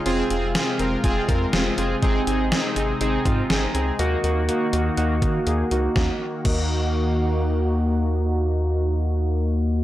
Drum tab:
CC |--------|--------|--------|--x-----|
HH |xxxxxxxx|xxxxxxxx|xxxxxxxx|--------|
SD |--o---o-|--o---o-|--------|o-------|
BD |----oo--|o----o--|-----o--|o-o-----|

CC |--------|
HH |--------|
SD |--------|
BD |--------|